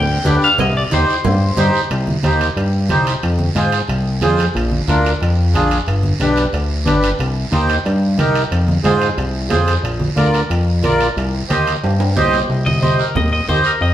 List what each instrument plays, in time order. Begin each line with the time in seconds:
Already playing: analog synth bass D2, clean electric guitar G5
0.24 analog synth bass D2, accordion D4 G4 B4, cowbell, high conga, low timbale, short guiro
0.42 clean electric guitar F5, short guiro
0.58 analog synth bass C2, clean electric guitar D#5, cowbell, low conga, long guiro
0.77 clean electric guitar D5
0.91 analog synth bass D#2, accordion D#4 G4 C5, clean electric guitar C5, cowbell, high conga, short guiro
1.09 short guiro
1.25 analog synth bass G2, cowbell, low conga, long guiro
1.57 analog synth bass G2, accordion D#4 G4 C5, cowbell, high conga, short guiro
1.75 short guiro
1.91 analog synth bass C2, high timbale, long guiro
2.07 high conga
2.23 analog synth bass D#2, accordion D#4 G4 C5, high conga, high timbale, short guiro
2.41 high timbale, short guiro
2.57 analog synth bass G2, high timbale, long guiro
2.89 analog synth bass C2, accordion D#4 G4 C5, high conga, high timbale, short guiro
3.07 high timbale, short guiro
3.23 analog synth bass F2, high timbale, long guiro
3.39 high conga
3.55 analog synth bass G#2, accordion F4 G#4 C5, high conga, high timbale, short guiro
3.72 high timbale, short guiro
3.88 analog synth bass C2, high timbale, long guiro
4.21 analog synth bass F2, accordion F4 G#4 C5, high conga, high timbale, low timbale, short guiro
4.37 high timbale, short guiro
4.54 analog synth bass A#1, high timbale, long guiro
4.71 high conga
4.88 analog synth bass D2, accordion D4 F4 A#4, high conga, high timbale, short guiro
5.05 high timbale, short guiro
5.20 analog synth bass F2, high timbale, long guiro
5.54 analog synth bass A#1, accordion D4 F4 G#4, high conga, high timbale, short guiro
5.71 high timbale, short guiro
5.86 analog synth bass G1, high timbale, long guiro
6.03 high conga
6.20 analog synth bass B1, accordion D4 G4 B4, high conga, high timbale, short guiro
6.36 high timbale, short guiro
6.53 analog synth bass D2, high timbale, long guiro
6.86 analog synth bass G1, accordion D4 G4 B4, high conga, high timbale, low timbale, short guiro
7.03 high timbale, short guiro
7.19 analog synth bass C2, high timbale, long guiro
7.52 analog synth bass D#2, accordion D#4 G4 C5, high conga, high timbale, short guiro
7.69 high timbale, short guiro
7.85 analog synth bass G2, high timbale, long guiro
8.18 analog synth bass C2, accordion D#4 G4 A#4, high conga, high timbale, short guiro
8.35 high timbale, short guiro
8.52 analog synth bass F2, high timbale, long guiro
8.68 high conga
8.84 analog synth bass G#2, accordion F4 G#4 C5, high conga, high timbale, short guiro
9.01 high timbale, short guiro
9.17 analog synth bass C2, high timbale, long guiro
9.49 analog synth bass F2, accordion F4 G#4 C5, high conga, high timbale, low timbale, short guiro
9.67 high timbale, short guiro
9.83 analog synth bass A#1, high timbale, long guiro
10.00 high conga
10.16 analog synth bass D2, accordion F4 A#4 D5, high conga, high timbale, short guiro
10.34 high timbale, short guiro
10.50 analog synth bass F2, high timbale, long guiro
10.83 analog synth bass A#1, accordion F4 A#4 D5, high conga, high timbale, short guiro
11.00 high timbale, short guiro
11.17 analog synth bass C2, high timbale, long guiro
11.49 analog synth bass D#2, accordion G4 C5 D#5, high conga, high timbale, short guiro
11.67 high timbale, short guiro
11.84 analog synth bass G2, high timbale, long guiro
12.00 high timbale
12.16 analog synth bass C2, accordion G4 C5 D#5, high conga, low timbale, short guiro
12.33 low timbale, short guiro
12.49 analog synth bass C2, long guiro
12.66 clean electric guitar D#5, high conga
12.81 accordion G4 C5 D#5, clean electric guitar C5, high conga, short guiro
12.99 clean electric guitar A#4, short guiro
13.15 analog synth bass D#2, clean electric guitar D#5, low conga, long guiro
13.33 clean electric guitar D#5
13.48 analog synth bass D#2, accordion G4 C5 D#5, clean electric guitar C5, high conga, short guiro
13.64 clean electric guitar A#4, short guiro
13.81 analog synth bass F2, clean electric guitar D#5, long guiro